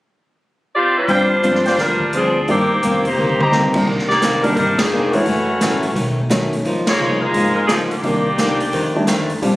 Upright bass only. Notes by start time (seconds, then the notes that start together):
1.08 G1
1.44 G#1
1.78 D2
2.48 G1
2.83 F1
3.18 C2
3.74 C#2
3.88 C2
4.57 G1
4.91 F1
5.26 F#1
5.61 A1
5.96 B1
6.52 B1
6.65 C#2
7.00 C2
7.34 G#1
8.04 C2
8.73 F2
9.42 A#1